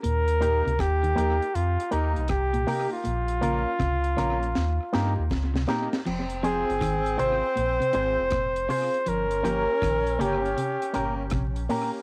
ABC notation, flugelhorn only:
X:1
M:4/4
L:1/16
Q:"Swing 16ths" 1/4=80
K:Fm
V:1 name="Flugelhorn"
B4 G4 F2 E2 G3 F- | F12- F2 z2 | z2 A4 c8 c2 | B6 G6 z4 |]